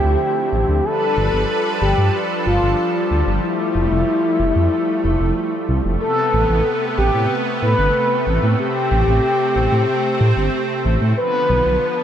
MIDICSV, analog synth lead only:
0, 0, Header, 1, 2, 480
1, 0, Start_track
1, 0, Key_signature, 0, "minor"
1, 0, Tempo, 645161
1, 632, Time_signature, 4, 2, 24, 8
1, 8954, End_track
2, 0, Start_track
2, 0, Title_t, "Analog synth lead"
2, 0, Program_c, 0, 81
2, 0, Note_on_c, 0, 67, 111
2, 632, Note_on_c, 0, 69, 105
2, 643, Note_off_c, 0, 67, 0
2, 1256, Note_off_c, 0, 69, 0
2, 1351, Note_on_c, 0, 67, 91
2, 1615, Note_off_c, 0, 67, 0
2, 1831, Note_on_c, 0, 65, 108
2, 2455, Note_off_c, 0, 65, 0
2, 2552, Note_on_c, 0, 64, 112
2, 4376, Note_off_c, 0, 64, 0
2, 4471, Note_on_c, 0, 69, 108
2, 5096, Note_off_c, 0, 69, 0
2, 5193, Note_on_c, 0, 67, 92
2, 5456, Note_off_c, 0, 67, 0
2, 5671, Note_on_c, 0, 71, 107
2, 6296, Note_off_c, 0, 71, 0
2, 6392, Note_on_c, 0, 67, 112
2, 8216, Note_off_c, 0, 67, 0
2, 8312, Note_on_c, 0, 71, 109
2, 8936, Note_off_c, 0, 71, 0
2, 8954, End_track
0, 0, End_of_file